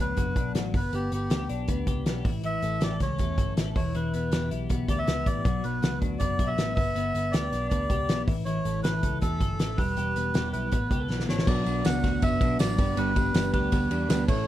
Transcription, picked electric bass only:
0.00 D2
0.18 F#1
0.36 B1
0.55 A1
0.74 G1
0.93 G1
1.12 G1
1.30 D2
1.49 B1
1.68 D2
1.87 C#2
2.06 B1
2.25 A1
2.63 A1
2.81 A1
3.00 C#2
3.19 E2
3.38 G1
3.57 A1
3.76 E1
3.95 E1
4.14 E1
4.32 E1
4.51 B1
4.70 B1
4.88 D2
5.07 C#2
5.27 A1
5.45 B1
5.64 B1
5.83 C#2
6.02 D2
6.21 F#1
6.39 B1
6.58 A1
6.77 G1
6.95 G1
7.15 G1
7.33 D2
7.52 B1
7.72 D2
7.90 C#2
8.09 B1
8.28 A1
8.65 A1
8.84 A1
9.03 C#2
9.22 E2
9.40 G1
9.59 A1
9.78 E1
9.97 E1
10.16 E1
10.34 E1
10.53 B1
10.72 A1
10.91 C#2
11.10 B1
11.28 A1
11.47 B1
11.66 B1
11.85 C#2
12.04 D2
12.23 F#1
12.41 B1
12.60 A1
12.79 G1
12.97 G1
13.34 G1
13.54 D2
13.72 D2
13.91 E2
14.09 D2
14.29 A1

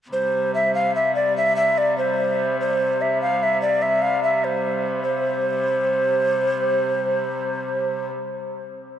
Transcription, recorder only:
0.13 C5
0.55 E5
0.75 F5
0.95 E5
1.15 D5
1.37 E5
1.56 E5
1.78 D5
1.98 C5
2.60 C5
3.01 E5
3.21 F5
3.43 E5
3.62 D5
3.82 E5
4.02 F5
4.23 E5
4.44 C5
5.03 C5

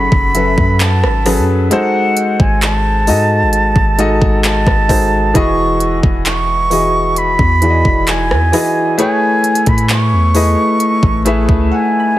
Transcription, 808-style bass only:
0.12 F#1
0.58 F#2
1.04 G#1
1.38 F#2
2.40 G#1
3.08 G#2
3.42 G#1
3.76 G#1
4.22 G#1
4.67 G#1
5.35 E1
6.04 E1
7.39 E2
7.85 E1
8.31 E2
9.67 A2
10.12 E2
11.03 A1
11.49 C#2

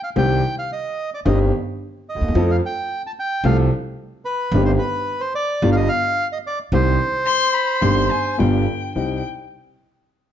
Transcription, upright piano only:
0.16 C2 C3 D#3 G3 C4 G4
1.25 G1 G2 D#3 G3 C4 G4
2.16 D2
2.23 D#2
2.28 E2
2.35 F2 F3 A3 C4 A4
3.45 C2 C3 F3 A3 C4 A4
4.54 G1 G2 D#3 G3 C4 G4
5.62 G1 G2 D3 G3 B3 F4
6.73 C2 C3 D#3 G3 C4 G4
7.81 G1 G2 D#3 G3 C4 G4
8.38 G1 G2 D3 G3 B3 F4
8.95 C2 G3 C4 D#4

